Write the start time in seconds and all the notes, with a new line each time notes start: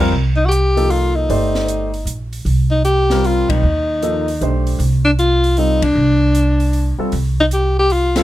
Already playing: F2
0.00 G3 C4 F4 A#4
0.12 C2
0.36 D#4
0.45 F#4 G4
0.52 closed hi-hat
0.76 F3 A#3 D#4 A4, open hi-hat
0.90 F4, open hi-hat
1.16 D#4
1.29 G1 A3 G4 C5 D5, open hi-hat
1.55 snare
1.68 closed hi-hat
1.94 open hi-hat
2.06 A#1, closed hi-hat
2.33 open hi-hat
2.45 C2, open hi-hat
2.71 D#4
2.85 G4, closed hi-hat
3.10 G3 C4 F4 A#4, snare
3.24 F4, open hi-hat
3.49 B1 D#4, kick, ride
3.63 D#2
4.02 F3 A#3 D#4 A4, closed hi-hat
4.28 open hi-hat
4.41 B1 A3 D4 G4 C5, closed hi-hat
4.67 open hi-hat
4.79 C2, open hi-hat
5.05 D4
5.19 F4, closed hi-hat
5.44 open hi-hat
5.57 G3 C4 D#4 F4 A4, open hi-hat
5.82 D4, kick, ride
5.95 C2
6.35 closed hi-hat
6.60 open hi-hat
6.73 open hi-hat
6.98 G3 C4 F4 A4, muted upright bass stroke
7.12 C2, open hi-hat
7.41 D#4
7.51 G4, closed hi-hat
7.79 G4
7.90 F4, open hi-hat
8.16 G3 C4 F4 A4, snare, ride